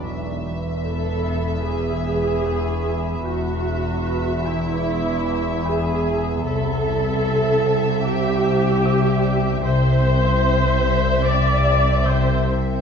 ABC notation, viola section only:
X:1
M:4/4
L:1/8
Q:1/4=75
K:Emix
V:1 name="Viola section"
z2 A2 G4 | F3 E3 G2 | A4 =G4 | =c4 d2 c z |]